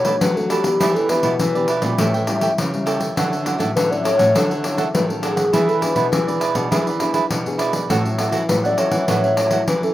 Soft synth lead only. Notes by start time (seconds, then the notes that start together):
Already playing: C#5
0.21 B4
0.36 A4
0.49 G4
0.95 A4
1.09 B4
3.76 B4
3.91 D5
4.05 C#5
4.64 C#5
4.94 B4
5.09 A4
5.22 G#4
5.69 A4
5.81 B4
8.49 B4
8.65 D5
8.78 C#5
9.69 B4
9.84 A4